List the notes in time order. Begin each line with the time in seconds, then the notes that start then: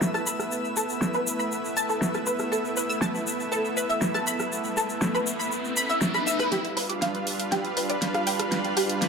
Already playing: A3 B3 E4 B4 E5 E6
0.02 snare, shaker
0.14 A5, cross-stick, shaker
0.27 B5, open hi-hat, shaker
0.40 cross-stick, shaker
0.51 shaker
0.65 shaker
0.77 A4, open hi-hat, shaker
0.89 shaker
1.02 snare, shaker
1.14 B4, shaker
1.27 open hi-hat, shaker
1.39 B5, shaker
1.52 shaker
1.65 shaker
1.77 A5, open hi-hat, shaker
1.89 A4, shaker
2.02 snare, shaker
2.14 cross-stick, shaker
2.26 B4, open hi-hat, shaker
2.39 cross-stick, shaker
2.52 A4, riser, shaker
2.65 shaker
2.77 B4, open hi-hat, shaker
2.90 E6, shaker
3.02 A5, snare, shaker
3.15 shaker
3.27 open hi-hat, shaker
3.40 shaker
3.52 A4, shaker
3.65 open hi-hat, shaker
3.77 B4, open hi-hat, shaker
3.89 E5, shaker
4.02 snare, shaker
4.14 A5, cross-stick, shaker
4.27 B5, open hi-hat, shaker
4.39 cross-stick, shaker
4.52 shaker
4.64 shaker
4.77 A4, open hi-hat, shaker
4.89 shaker
5.01 snare, shaker
5.15 B4, shaker
5.27 open hi-hat, shaker
5.39 B5, shaker
5.52 shaker
5.65 shaker
5.76 B5, open hi-hat, shaker
5.89 E5, open hi-hat, shaker
6.01 snare, shaker
6.14 B5, cross-stick, shaker
6.27 E5, open hi-hat, shaker
6.39 B4, cross-stick, shaker
6.51 G3 D4 F4 G4 B4 F5 B5, snare, closed hi-hat
6.65 closed hi-hat
6.77 B4, open hi-hat
6.89 D6, closed hi-hat
7.02 F5, snare, closed hi-hat
7.15 closed hi-hat
7.27 open hi-hat
7.40 closed hi-hat
7.52 G4, snare, closed hi-hat
7.65 closed hi-hat
7.77 B4, open hi-hat
7.90 D5, closed hi-hat
8.02 snare, closed hi-hat
8.14 F5, cross-stick, closed hi-hat
8.27 G5, open hi-hat
8.39 cross-stick, closed hi-hat
8.52 snare, closed hi-hat
8.64 closed hi-hat
8.77 G4, open hi-hat
8.89 closed hi-hat
9.02 snare, closed hi-hat